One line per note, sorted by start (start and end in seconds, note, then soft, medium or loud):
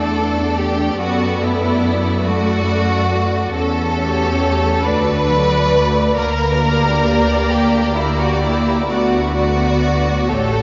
0.00 0.99 E2 soft
0.00 0.96 A3 medium
0.00 0.95 D4 medium
0.00 0.58 A4 medium
0.00 0.96 A4 medium
0.00 2.22 D5 soft
0.57 0.99 G4 medium
0.98 3.49 F#2 medium
0.98 2.23 B3 medium
0.98 1.41 F#4 medium
0.98 2.23 A4 medium
1.42 2.26 E4 medium
2.24 3.53 A3 medium
2.24 3.54 A3 medium
2.24 3.53 F#4 medium
2.24 3.51 A4 medium
2.24 3.51 D5 soft
3.53 4.70 E2 medium
3.53 4.83 C#4 medium
3.53 4.82 A4 medium
3.97 4.83 A3 medium
3.97 4.83 G4 medium
3.97 4.83 C#5 medium
4.83 6.01 D2 medium
4.83 5.28 A3 medium
4.83 5.28 D4 medium
4.83 5.27 F#4 soft
4.83 6.16 B4 medium
4.83 5.27 D5 soft
5.28 5.72 F#3 medium
5.28 6.15 A3 medium
5.28 6.15 F#4 medium
5.28 6.15 D5 medium
5.73 6.17 A3 medium
6.16 7.35 D2 medium
6.16 8.85 A#3 medium
6.16 7.48 A#4 medium
6.61 7.94 A#3 medium
6.61 7.94 G4 medium
6.61 7.94 D5 medium
7.50 8.72 D2 medium
7.50 7.96 G4 medium
7.96 8.87 A#3 medium
7.96 8.19 E4 medium
7.96 8.87 G4 medium
7.96 8.87 D5 medium
8.19 8.42 F#4 medium
8.42 8.88 E4 medium
8.88 10.13 D2 medium
8.88 9.34 A3 medium
8.88 10.27 B3 medium
8.88 9.34 F#4 medium
8.88 9.34 D5 soft
9.35 10.27 A3 medium
9.35 10.28 F#4 medium
9.35 10.28 D5 medium
10.28 10.62 A1 medium
10.28 10.62 A3 soft
10.28 10.62 A3 medium
10.28 10.62 G4 soft
10.28 10.62 A4 medium
10.28 10.62 C#5 soft